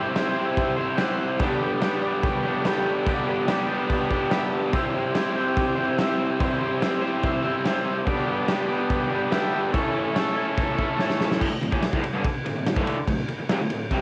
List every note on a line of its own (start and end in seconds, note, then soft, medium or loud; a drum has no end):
0.00 0.15 C3 loud
0.00 0.98 G3 loud
0.00 0.13 C4 medium
0.00 0.14 E4 medium
0.00 0.16 G4 medium
0.00 0.17 C5 medium
0.14 0.38 C4 medium
0.14 0.37 E4 medium
0.14 0.46 G4 medium
0.14 0.37 G4 medium
0.14 0.47 C5 medium
0.14 0.47 E5 loud
0.14 snare loud
0.14 crash medium
0.18 0.34 C5 medium
0.35 0.78 C4 medium
0.35 0.77 E4 medium
0.35 0.77 G4 medium
0.35 0.75 C5 medium
0.56 0.88 G4 medium
0.56 0.89 C5 medium
0.56 0.89 E5 loud
0.56 kick loud
0.56 crash medium
0.76 0.98 C4 soft
0.76 0.98 E4 medium
0.76 0.99 G4 medium
0.76 0.99 C5 medium
0.96 1.38 C3 loud
0.96 1.39 G3 loud
0.96 1.39 C4 loud
0.96 1.39 E4 loud
0.96 1.29 G4 medium
0.96 1.29 C5 medium
0.96 1.30 F#5 loud
0.96 snare loud
0.96 crash medium
1.00 1.41 G4 loud
1.00 1.40 C5 loud
1.39 2.63 G2 medium
1.39 1.81 D3 loud
1.39 1.63 G3 medium
1.39 1.62 B3 loud
1.39 1.61 D4 loud
1.39 1.71 G4 medium
1.39 1.59 G4 loud
1.39 1.72 B4 medium
1.39 1.72 D5 medium
1.39 kick loud
1.39 crash medium
1.60 1.80 G3 medium
1.60 1.81 B3 medium
1.60 1.82 D4 medium
1.60 1.84 G4 medium
1.80 2.05 G3 medium
1.80 2.04 B3 medium
1.80 2.03 D4 medium
1.80 2.12 G4 loud
1.80 2.13 B4 medium
1.80 2.13 D5 loud
1.80 snare loud
1.80 crash medium
1.84 2.01 G4 medium
2.02 2.46 G3 medium
2.02 2.44 B3 medium
2.02 2.43 D4 medium
2.02 2.42 G4 medium
2.21 2.54 G4 medium
2.21 2.54 B4 medium
2.21 2.54 C#5 medium
2.21 kick loud
2.21 crash medium
2.43 2.64 G3 medium
2.43 2.64 B3 medium
2.43 2.65 D4 medium
2.43 2.67 G4 medium
2.60 3.04 G2 loud
2.60 3.05 D3 loud
2.60 2.94 G4 medium
2.60 2.95 B4 medium
2.60 2.95 C#5 loud
2.65 3.06 G3 loud
2.65 3.06 B3 loud
2.65 3.07 D4 loud
2.65 3.08 G4 loud
2.65 snare loud
2.65 crash medium
3.03 3.47 G2 medium
3.03 3.48 D3 medium
3.03 3.36 G4 medium
3.03 3.37 B4 medium
3.03 3.37 D5 medium
3.07 3.29 G3 medium
3.07 3.27 B3 loud
3.07 3.26 D4 loud
3.07 3.26 G4 loud
3.07 kick loud
3.07 crash medium
3.26 3.46 G3 medium
3.26 3.47 B3 medium
3.26 3.48 D4 medium
3.26 3.50 G4 medium
3.46 3.70 G3 medium
3.46 3.68 B3 medium
3.46 3.67 D4 medium
3.46 3.79 G4 medium
3.46 3.79 B4 medium
3.46 3.67 D5 loud
3.46 snare loud
3.46 crash medium
3.50 3.67 G4 medium
3.67 4.12 G3 medium
3.67 4.11 B3 medium
3.67 4.09 D4 medium
3.67 4.09 G4 medium
3.67 3.87 D5 medium
3.88 4.21 G4 medium
3.88 4.21 B4 medium
3.88 4.21 D5 medium
3.88 4.08 F#5 medium
3.88 kick loud
3.88 crash medium
4.09 4.31 G3 medium
4.09 4.31 B3 medium
4.09 4.31 D4 medium
4.09 4.33 G4 medium
4.09 4.30 G5 medium
4.09 kick medium
4.29 4.71 G2 medium
4.29 4.71 D3 loud
4.29 4.72 G3 loud
4.29 4.72 B3 medium
4.29 4.72 D4 loud
4.29 4.62 G4 loud
4.29 4.63 B4 medium
4.29 4.63 E5 loud
4.29 4.50 B5 medium
4.29 snare loud
4.29 crash medium
4.34 4.74 G4 loud
4.53 4.72 A5 medium
4.71 5.96 C3 loud
4.71 5.98 G3 loud
4.71 4.95 C4 medium
4.71 4.95 E4 loud
4.71 5.04 G4 medium
4.71 4.94 G4 loud
4.71 5.04 C5 medium
4.71 4.92 C5 loud
4.71 5.05 E5 medium
4.71 kick loud
4.71 crash medium
4.92 5.12 C4 medium
4.92 5.14 E4 medium
4.92 5.15 G4 medium
4.92 5.16 C5 medium
5.13 5.37 C4 medium
5.13 5.36 E4 medium
5.13 5.35 G4 medium
5.13 5.47 G4 medium
5.13 5.34 C5 medium
5.13 snare loud
5.13 crash medium
5.17 5.47 C5 medium
5.17 5.48 E5 medium
5.34 5.78 C4 medium
5.34 5.76 E4 medium
5.34 5.76 G4 medium
5.34 5.74 C5 medium
5.57 5.88 G4 medium
5.57 5.89 C5 medium
5.57 5.89 D5 loud
5.57 kick loud
5.57 crash medium
5.75 5.97 C4 medium
5.75 5.98 E4 medium
5.75 5.99 G4 medium
5.75 5.99 C5 medium
5.97 6.37 C3 loud
5.97 6.39 G3 medium
5.97 6.39 C4 loud
5.97 6.40 E4 loud
5.97 6.30 G4 loud
5.97 6.41 G4 loud
5.97 6.30 C5 medium
5.97 6.41 C5 loud
5.97 6.30 E5 loud
5.97 snare loud
5.97 crash medium
6.39 6.81 C3 medium
6.39 7.64 G3 loud
6.39 6.62 C4 loud
6.39 6.61 E4 loud
6.39 6.71 G4 medium
6.39 6.60 G4 medium
6.39 6.72 C5 medium
6.39 6.58 C5 loud
6.39 6.72 E5 medium
6.39 kick loud
6.39 crash medium
6.59 6.79 C4 medium
6.59 6.81 E4 medium
6.59 6.83 G4 medium
6.59 6.83 C5 medium
6.80 7.04 C4 medium
6.80 7.03 E4 medium
6.80 7.13 G4 medium
6.80 7.03 G4 medium
6.80 7.13 C5 medium
6.80 7.00 C5 medium
6.80 7.14 E5 loud
6.80 snare loud
6.80 crash medium
7.01 7.46 C4 medium
7.01 7.44 E4 medium
7.01 7.43 G4 medium
7.01 7.42 C5 medium
7.23 7.55 G4 medium
7.23 7.55 C5 medium
7.23 7.56 E5 loud
7.23 kick loud
7.23 crash medium
7.43 7.64 C4 medium
7.43 7.64 E4 medium
7.43 7.65 G4 medium
7.43 7.66 C5 medium
7.64 8.04 C3 medium
7.64 8.05 G3 medium
7.64 8.05 C4 loud
7.64 8.06 E4 loud
7.64 7.96 G4 loud
7.64 8.06 G4 loud
7.64 7.97 C5 medium
7.64 8.06 C5 loud
7.64 7.98 E5 loud
7.64 snare loud
7.64 crash medium
8.04 8.47 G2 medium
8.04 8.47 D3 medium
8.04 8.28 G3 loud
8.04 8.27 B3 loud
8.04 8.25 D4 loud
8.04 8.39 G4 medium
8.04 8.24 G4 loud
8.04 8.39 B4 medium
8.04 8.39 D5 medium
8.04 kick loud
8.04 crash medium
8.25 8.45 G3 medium
8.25 8.46 B3 medium
8.25 8.47 D4 medium
8.25 8.48 G4 medium
8.46 8.69 G3 medium
8.46 8.68 B3 medium
8.46 8.67 D4 medium
8.46 8.80 G4 medium
8.46 8.65 G4 medium
8.46 8.80 B4 medium
8.46 8.80 D5 medium
8.46 snare loud
8.46 crash medium
8.66 9.10 G3 medium
8.66 9.09 B3 medium
8.66 9.08 D4 medium
8.66 9.07 G4 medium
8.90 9.22 G4 medium
8.90 9.22 B4 medium
8.90 9.23 D5 medium
8.90 kick loud
8.90 crash medium
9.08 9.30 G3 medium
9.08 9.31 B3 medium
9.08 9.31 D4 medium
9.08 9.32 G4 medium
9.30 9.70 G2 loud
9.30 9.71 D3 loud
9.30 9.72 G3 loud
9.30 9.72 B3 loud
9.30 9.73 D4 loud
9.30 9.62 G4 medium
9.30 9.63 B4 medium
9.30 9.63 E5 loud
9.30 snare loud
9.30 crash medium
9.34 9.73 G4 loud
9.71 10.14 A2 loud
9.71 10.14 E3 loud
9.71 9.94 A3 loud
9.71 9.93 C#4 loud
9.71 10.05 E4 medium
9.71 9.93 E4 loud
9.71 9.91 A4 loud
9.71 10.06 A4 medium
9.71 kick loud
9.71 crash medium
9.76 10.06 C#5 loud
9.92 10.12 A3 medium
9.92 10.13 C#4 medium
9.92 10.14 E4 medium
9.92 10.15 A4 medium
10.13 10.37 A3 medium
10.13 10.36 C#4 medium
10.13 10.46 E4 loud
10.13 10.35 E4 medium
10.13 10.46 A4 medium
10.13 10.33 A4 medium
10.13 10.47 C#5 medium
10.13 snare loud
10.13 crash medium
10.34 10.79 A3 medium
10.34 10.78 C#4 medium
10.34 10.76 E4 medium
10.34 10.75 A4 medium
10.57 10.89 E4 medium
10.57 10.89 A4 medium
10.57 10.89 C#5 medium
10.57 kick loud
10.57 crash medium
10.76 10.98 A3 medium
10.76 10.99 C#4 medium
10.76 10.99 E4 medium
10.76 11.00 A4 medium
10.76 kick medium
10.95 11.38 A2 loud
10.95 11.39 E3 medium
10.95 11.28 E4 loud
10.95 11.29 A4 medium
10.95 11.30 C#5 medium
10.99 11.39 A3 loud
10.99 11.40 C#4 medium
10.99 11.40 E4 loud
10.99 11.40 A4 loud
10.99 snare medium
11.10 snare medium
11.21 snare medium
11.31 snare loud
11.39 11.49 D2 medium
11.39 11.50 A2 medium
11.39 kick loud
11.39 crash loud
11.51 muted overdriven electric guitar stroke medium
11.62 11.71 D2 medium
11.62 11.70 A2 medium
11.62 ride medium
11.71 11.81 A2 medium
11.71 11.82 E3 loud
11.71 kick loud
11.82 muted overdriven electric guitar stroke medium
11.82 snare loud
11.82 ride loud
11.93 12.02 D2 loud
11.93 12.03 A2 loud
11.93 kick loud
12.03 muted overdriven electric guitar stroke medium
12.03 ride medium
12.13 12.23 G2 medium
12.13 12.23 D3 medium
12.24 muted overdriven electric guitar stroke medium
12.24 kick loud
12.24 ride loud
12.45 12.54 D2 medium
12.45 12.55 A2 medium
12.45 ride medium
12.56 12.66 D2 medium
12.56 12.66 A2 medium
12.66 12.75 D2 medium
12.66 12.75 A2 medium
12.66 snare loud
12.66 ride loud
12.76 12.96 D2 medium
12.76 12.96 A2 loud
12.76 12.96 D3 loud
12.76 kick loud
12.87 ride medium
12.97 muted overdriven electric guitar stroke medium
13.08 13.24 D2 medium
13.08 13.24 A2 medium
13.08 kick loud
13.08 ride loud
13.28 muted overdriven electric guitar stroke medium
13.28 ride medium
13.40 muted overdriven electric guitar stroke medium
13.49 13.59 F2 medium
13.49 13.59 C3 loud
13.49 snare loud
13.49 ride loud
13.60 13.69 D2 medium
13.60 13.69 A2 medium
13.70 13.87 D2 medium
13.70 13.87 A2 medium
13.70 ride medium
13.91 14.00 C3 medium
13.91 14.01 G3 loud
13.91 kick medium
13.91 ride loud